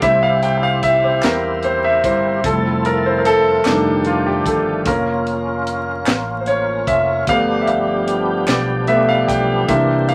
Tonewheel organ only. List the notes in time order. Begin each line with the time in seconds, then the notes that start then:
0.00 C4 E4 G4
2.44 F3 A3 A4
3.65 D#3 D4 G4
4.86 A#3 C#4 F4
7.28 F3 G3 B3 D4 G4
9.68 E3 A#3 C4